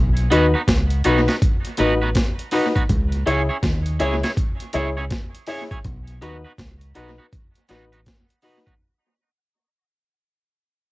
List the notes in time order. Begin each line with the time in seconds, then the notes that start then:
Already playing: B1
0.17 closed hi-hat
0.31 D#2 B3 D#4 F#4 B4, closed hi-hat
0.54 B3 D#4 F#4 B4
0.68 C#2, kick, snare, closed hi-hat
0.90 closed hi-hat
1.04 B1 B3 D#4 F#4 B4, closed hi-hat
1.28 B3 D#4 F#4 B4, snare, closed hi-hat
1.42 kick, closed hi-hat
1.65 closed hi-hat
1.77 A1 B3 D#4 F#4 B4, closed hi-hat
2.02 B3 D#4 F#4 B4
2.15 kick, snare, closed hi-hat
2.39 closed hi-hat
2.51 B3 D#4 F#4 B4, open hi-hat
2.75 B3 D#4 F#4 B4, kick, closed hi-hat
2.89 C#2, kick, closed hi-hat
3.12 closed hi-hat
3.26 C#2 C#4 E4 G#4 C#5, closed hi-hat
3.49 C#4 E4 G#4 C#5
3.63 D#2, kick, snare, closed hi-hat
3.86 closed hi-hat
4.00 C#2 C#4 E4 G#4 C#5, closed hi-hat
4.23 C#4 E4 G#4 C#5, snare, closed hi-hat
4.37 kick, closed hi-hat
4.60 closed hi-hat
4.73 C#2 C#4 E4 G#4 C#5, closed hi-hat
4.97 C#4 E4 G#4 C#5
5.10 kick, snare, closed hi-hat
5.35 closed hi-hat
5.47 C#4 E4 G#4 C#5, open hi-hat
5.71 C#4 E4 G#4 C#5, kick, closed hi-hat
5.84 B1, kick, closed hi-hat
6.07 closed hi-hat
6.21 D#2 B3 D#4 F#4 B4, closed hi-hat
6.45 B3 D#4 F#4 B4
6.58 C#2, kick, snare, closed hi-hat
6.81 closed hi-hat
6.95 B1 B3 D#4 F#4 B4, closed hi-hat
7.18 B3 D#4 F#4 B4
7.33 kick, closed hi-hat
7.55 closed hi-hat
7.69 A1 B3 D#4 F#4 B4, snare, closed hi-hat
7.92 B3 D#4 F#4 B4, closed hi-hat
8.06 kick, snare, closed hi-hat
8.30 closed hi-hat
8.42 B3 D#4 F#4 B4, open hi-hat
8.66 B3 D#4 F#4 B4, kick, closed hi-hat